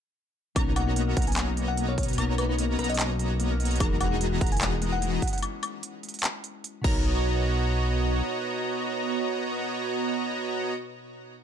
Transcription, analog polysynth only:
0.56 B3 F#4 C#5 D#5 A#5
1.17 B3 C#5 D#5 A#5
2.18 B3 F#4 C#5 D#5 A#5
2.79 B3 F#4 C#5 D#5 A#5
3.80 E3 B3 F#4 G#4
4.41 E3
6.84 B3 F#4 C#5 D#5 A#5

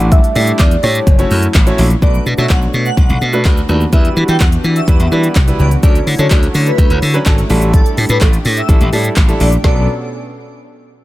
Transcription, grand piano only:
Already playing: A3 D4 E4 G4 D5
0.35 A3 D4 E4 G4 D5
0.83 A3 D4 E4 G4 D5
1.19 A3 C#4 E4 F#4 C#5
1.66 A3 C#4 E4 F#4 C#5
2.02 A3 D4 F#4 B4
2.38 A3 D4 F#4 C#5
3.33 A3 D4 F#4 B4
3.45 A3 D4 F#4 B4
3.69 A3 D4 F#4 B4
3.92 G3 D4 E4 B4
4.88 G3 D4 E4 B4
5.11 G3 D4 E4 B4
5.47 G3 D4 E4 B4
5.83 F#3 C#4 D4 A4
6.19 F#3 C#4 D4 A4
7.14 F#3 C#4 D4 B4
7.26 F#3 C#4 D4 A4
7.50 G3 D4 E4 A4
8.69 G3 D4 E4 A4
8.92 G3 D4 E4 A4
9.28 G3 D4 E4 A4
9.64 F#3 B3 D4 A4

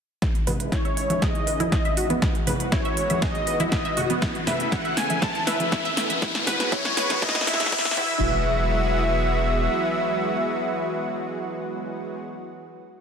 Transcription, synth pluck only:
0.22 E4
0.47 B4
0.72 E4
0.85 E5
1.10 E5
1.22 G#4
1.47 B4
1.60 E4
1.72 E4
1.85 E5
1.97 F#4
2.10 B3
2.22 E4
2.47 B4
2.72 E4
2.85 E5
3.10 E5
3.22 G#4
3.47 B4
3.60 E4
3.72 E4
3.85 E5
3.97 F#4
4.10 B3
4.22 E4
4.47 B4
4.72 E4
4.85 E5
5.10 E5
5.22 E4
5.47 B4
5.72 E4
5.85 E5
6.10 E5
6.22 E4
6.47 B4
6.72 E4
6.97 B4
7.22 E4
7.47 E4
7.72 E4
7.97 E4

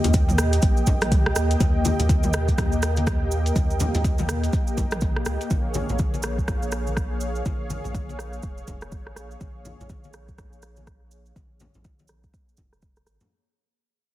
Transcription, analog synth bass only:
0.04 D#2
0.63 A#1
0.87 A#1
1.12 C#2
1.36 D#2
1.61 D#2
1.99 D#2
2.58 D#2
3.56 D#2
3.95 D#2
4.78 A#1
5.26 C#2
5.51 A#1
5.89 A#1
6.48 A#1
7.46 A#1
7.85 A#1
8.43 F1
8.68 F1
8.92 G#1
9.16 A#1
9.41 A#1
9.80 A#1
10.39 A#1
11.36 A#1
11.75 A#1
12.58 F1
13.07 G#1

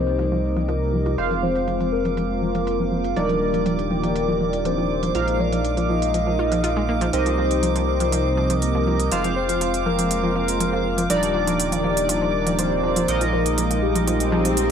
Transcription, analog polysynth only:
Already playing: C4 D#4 G4 A#4 D#5
1.18 G#3 C4 F4 C5 F5
3.16 G3 D4 D#4 A#4 D5
5.15 G#3 D#4 F4 A#4 F5
7.13 C4 D#4 G4 A#4 D#5
9.12 G#3 C4 F4 C5 F5
11.10 G3 D4 D#4 A#4 D5
13.08 G#3 D#4 F4 A#4 D#5

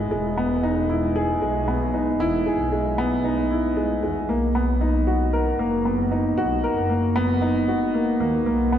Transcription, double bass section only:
0.11 E1
1.42 B1
2.20 E1
2.60 B1
4.03 E2
4.29 B1
5.59 F#1
6.38 B1
6.77 F#1
8.20 D#2
8.46 B1

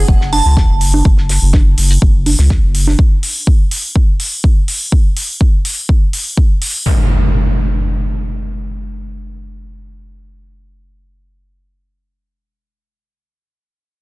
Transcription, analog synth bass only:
0.08 F#1
0.45 C#2
0.70 F#1
1.05 F#1
1.42 F#1
1.78 F#1
2.02 F#1
2.39 C#2
2.63 F#1

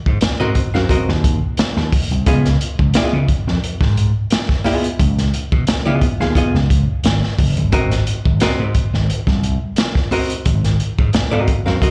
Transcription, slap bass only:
0.06 G#2
0.23 muted slap bass stroke
0.40 G#2
0.75 F#2
1.09 D#2
1.59 muted slap bass stroke
1.77 D#2
2.11 C2
2.27 C#2
2.79 C#2
2.95 muted slap bass stroke
3.13 C#3
3.47 F2
3.64 muted slap bass stroke
3.81 G#2
5.00 C#2
5.52 B2
5.68 muted slap bass stroke
5.86 C#3
6.20 D#2
6.36 muted slap bass stroke
6.54 C#2
7.04 G#1
7.39 F#1
7.57 G1
7.73 G#1
8.26 G#1
8.41 muted slap bass stroke
8.59 G#2
8.93 G#1
9.10 muted slap bass stroke
9.27 C2
10.46 G#1
10.99 G#2
11.14 muted slap bass stroke
11.32 G#2
11.66 F#2

